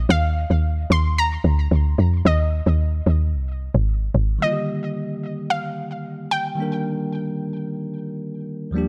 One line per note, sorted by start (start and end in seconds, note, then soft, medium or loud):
0.09 0.45 D#2 loud
0.09 0.87 F5 loud
0.50 0.85 D#2 medium
0.90 1.38 D#2 loud
0.90 1.19 C6 loud
1.18 2.29 A#5 loud
1.44 1.68 D2 loud
1.71 1.95 D2 medium
1.98 2.22 F2 medium
2.25 2.61 D#2 loud
2.25 3.84 D#5 medium
2.66 3.02 D#2 loud
3.06 3.35 D#2 medium
3.33 3.70 C2 medium
3.75 4.10 G#1 medium
4.14 4.38 G#1 loud
4.39 6.52 D#3 medium
4.39 6.53 G3 medium
4.39 6.54 A#3 medium
4.39 5.53 D#5 medium
4.44 6.55 D3 medium
4.44 4.50 F4 medium
4.52 6.59 G4 medium
5.50 6.33 F5 loud
6.31 8.43 G5 loud
6.55 8.69 D#3 medium
6.55 8.70 G3 medium
6.55 8.70 A#3 medium
6.60 8.71 D4 medium
6.60 8.72 A#4 medium
8.71 8.88 D#2 medium
8.71 8.88 F3 medium
8.71 8.88 G3 medium
8.75 8.88 A#3 medium
8.75 8.88 D4 medium
8.75 8.88 G4 medium